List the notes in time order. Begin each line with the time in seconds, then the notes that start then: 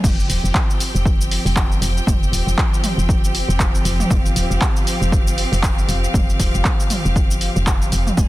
0.04 F1 F3 C4 G4 G5, kick, mid tom, crash, shaker
0.20 shaker
0.29 D#1, open hi-hat, shaker
0.44 F1, shaker
0.55 kick, clap, shaker
0.70 shaker
0.80 open hi-hat, shaker
0.95 F1, shaker
1.05 kick, shaker
1.21 shaker
1.31 open hi-hat, shaker
1.45 F1, open hi-hat, shaker
1.56 kick, clap, shaker
1.72 shaker
1.81 F1, open hi-hat, shaker
1.97 shaker
2.07 F1, kick, mid tom, shaker
2.23 shaker
2.32 D#1, open hi-hat, shaker
2.47 F1, shaker
2.58 kick, clap, shaker
2.74 shaker
2.84 mid tom, open hi-hat, shaker
2.98 F1, shaker
3.09 kick, shaker
3.25 shaker
3.35 open hi-hat, shaker
3.48 F1, shaker
3.60 kick, clap, shaker
3.75 shaker
3.85 F1, open hi-hat, shaker
4.00 mid tom, shaker
4.10 F1 F5, kick, mid tom, shaker
4.26 shaker
4.36 D#1, open hi-hat, shaker
4.50 F1, shaker
4.61 kick, clap, shaker
4.76 shaker
4.87 open hi-hat, shaker
5.01 F1, shaker
5.12 kick, shaker
5.27 shaker
5.38 open hi-hat, shaker
5.52 F1, open hi-hat, shaker
5.63 kick, clap, shaker
5.79 shaker
5.88 F1, open hi-hat, shaker
6.04 shaker
6.14 F1, kick, mid tom, shaker
6.30 shaker
6.40 D#1, kick, open hi-hat, shaker
6.54 F1, shaker
6.65 kick, clap, shaker
6.80 shaker
6.90 mid tom, open hi-hat, shaker
7.05 F1, shaker
7.16 kick, shaker
7.31 shaker
7.41 open hi-hat, shaker
7.56 F1, shaker
7.67 kick, clap, shaker
7.82 shaker
7.92 F1, open hi-hat, shaker
8.07 mid tom, shaker
8.17 D#1 D#3 A#3 F4 G#4, kick, mid tom, shaker